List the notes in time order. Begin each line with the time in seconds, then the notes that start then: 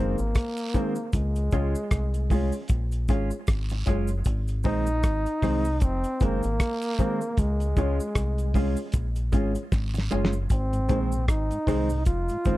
Already playing: F#1 D#3 G#3 C4 D#4 G#4 C5
0.00 A#3
0.18 G#1, muted clean electric guitar stroke, cabasa
0.35 kick, cross-stick, closed hi-hat, cabasa, long guiro
0.57 closed hi-hat, cabasa
0.74 D#3 G#3 C4 D#4 G#4 C5, kick, closed hi-hat, cabasa
0.95 muted clean electric guitar stroke, cabasa
1.13 C#2 G#3, kick, closed hi-hat, cabasa
1.36 closed hi-hat, cabasa
1.51 C#2 G#3 C#4 F4 G#4 C#5, kick, closed hi-hat, cabasa
1.75 cabasa
1.91 C2, kick, cross-stick, closed hi-hat, cabasa
2.14 closed hi-hat, cabasa
2.30 G#3 C#4 F4 G#4 C#5, kick, open hi-hat, cabasa
2.52 cabasa
2.68 A#1, kick, closed hi-hat, cabasa
2.92 closed hi-hat, cabasa
3.08 G#1 G#3 C#4 F4 G#4 C#5, kick, closed hi-hat, cabasa
3.31 muted clean electric guitar stroke, cabasa
3.47 G#1, kick, cross-stick, closed hi-hat, cabasa, long guiro
3.69 muted clean electric guitar stroke, closed hi-hat, cabasa
3.86 F#1 G#3 C#4 F4 G#4 C#5, kick, closed hi-hat, cabasa
4.07 closed hi-hat, cabasa
4.25 G#1, kick, closed hi-hat, cabasa
4.48 closed hi-hat, cabasa
4.63 A#1 D#3 G#3 C4 D#4 G#4 C5, kick, open hi-hat, cabasa
4.86 closed hi-hat, cabasa
5.03 G#1, kick, cross-stick, closed hi-hat, cabasa
5.26 closed hi-hat, cabasa
5.42 C2 D#3 G#3 C4 D#4 G#4 C5, kick, cross-stick, open hi-hat, cabasa
5.65 cabasa
5.80 F1 C4, kick, closed hi-hat, cabasa
6.04 closed hi-hat, cabasa
6.20 F#1 D#3 G#3 A#3 C4 D#4 G#4 C5, kick, closed hi-hat, cabasa
6.43 G#1, muted clean electric guitar stroke, closed hi-hat, cabasa
6.60 kick, cross-stick, closed hi-hat, cabasa, long guiro
6.82 closed hi-hat, cabasa
6.98 D#3 G#3 C4 D#4 G#4 C5, kick, closed hi-hat, cabasa
7.21 muted clean electric guitar stroke, cabasa
7.37 C#2 G#3, kick, closed hi-hat, cabasa
7.60 closed hi-hat, cabasa
7.77 C#2 G#3 C#4 F4 G#4 C#5, kick, closed hi-hat, cabasa
8.00 cabasa
8.15 C2, kick, cross-stick, closed hi-hat, cabasa
8.38 closed hi-hat, cabasa
8.54 G#3 C#4 F4 G#4 C#5, kick, open hi-hat, cabasa
8.76 cabasa
8.92 A#1, kick, closed hi-hat, cabasa
9.16 closed hi-hat, cabasa
9.32 G#1 G#3 C#4 F4 G#4 C#5, kick, closed hi-hat, cabasa
9.55 muted clean electric guitar stroke, closed hi-hat, cabasa
9.72 G#1, kick, snare, cabasa, long guiro
9.94 muted clean electric guitar stroke, cabasa
9.98 snare
10.11 F#1 G#3 C#4 F4 G#4 C#5, cabasa
10.25 snare
10.33 cabasa
10.50 G#1 C4, kick, closed hi-hat, cabasa
10.73 G#2, closed hi-hat, cabasa
10.88 A#1 D#3 G#3 C4 D#4 G#4 C5, kick, closed hi-hat, cabasa
11.12 G#2, cabasa
11.28 G#1 D#4, kick, cross-stick, closed hi-hat, cabasa
11.51 G#2, closed hi-hat, cabasa
11.67 C2 D#3 G#3 C4 D#4 G#4 C5, kick, cross-stick, open hi-hat, cabasa
11.89 G#2, cabasa
12.05 F1 F4, kick, closed hi-hat, cabasa
12.29 G#2, closed hi-hat, cabasa
12.45 F#1 D#3 G#3 C4 D#4 G#4 C5, kick, closed hi-hat, cabasa